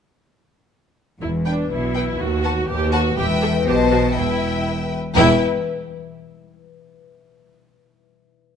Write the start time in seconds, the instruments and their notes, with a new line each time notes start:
1.21 double bass section E1, cello section E2, harp E3, viola section E4
1.45 harp B3, viola section D4, violin section B4 G5
1.69 double bass section B1, cello section B2, viola section E4, harp B4
1.95 harp G4, violin section B4 G5
2.19 double bass section D#2, cello section D#2, harp D#3, viola section F#4
2.44 harp B3, violin section B4 F#5 A5
2.68 double bass section D#2, cello section D#2, viola section G4, harp B4
2.92 viola section F#4, harp A4, violin section B4 F#5 A5
3.16 double bass section E1, cello section E2, harp E3, viola section G4, violin section B4 E5 G5
3.42 harp G4 B4, viola section A4
3.66 double bass section B1, cello section B2, harp B2, viola section G4, violin section C5 D#5 A5
3.91 harp D#4 C5, viola section F#4
4.15 double bass section E1, cello section E2, harp E3, viola section E4, violin section B4 E5 G5
4.42 harp E4
4.67 harp G4
4.91 harp E5
5.13 double bass section E1, cello section E2, harp E3 G3 E4, viola section E4, violin section B4 E5 G5
5.18 harp B4